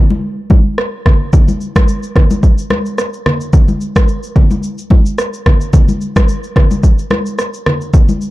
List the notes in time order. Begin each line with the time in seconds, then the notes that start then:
0.10 high conga
0.50 kick, high conga
0.78 cross-stick
1.06 kick, cross-stick, low conga
1.33 kick, low conga, shaker
1.48 high conga, shaker
1.61 shaker
1.76 kick, cross-stick, high conga, shaker
1.88 shaker
2.03 shaker
2.16 kick, cross-stick, low conga
2.31 high conga, shaker
2.43 kick, shaker
2.58 shaker
2.70 cross-stick, high conga
2.86 shaker
2.98 cross-stick, shaker
3.13 shaker
3.26 cross-stick, low conga
3.41 shaker
3.53 kick, low conga, shaker
3.68 high conga, shaker
3.81 shaker
3.96 kick, cross-stick, high conga, shaker
4.08 shaker
4.23 shaker
4.36 kick, low conga
4.51 high conga, shaker
4.63 shaker
4.78 shaker
4.90 kick, high conga
5.06 shaker
5.18 cross-stick, shaker
5.34 shaker
5.46 kick, cross-stick, low conga
5.61 shaker
5.73 kick, low conga, shaker
5.89 high conga, shaker
6.01 shaker
6.16 kick, cross-stick, high conga, shaker
6.29 shaker
6.44 shaker
6.56 kick, cross-stick, low conga
6.71 high conga, shaker
6.83 kick, shaker
6.99 shaker
7.11 cross-stick, high conga
7.26 shaker
7.39 cross-stick, shaker
7.54 shaker
7.66 cross-stick, low conga
7.81 shaker
7.93 kick, low conga, shaker
8.09 high conga, shaker
8.21 shaker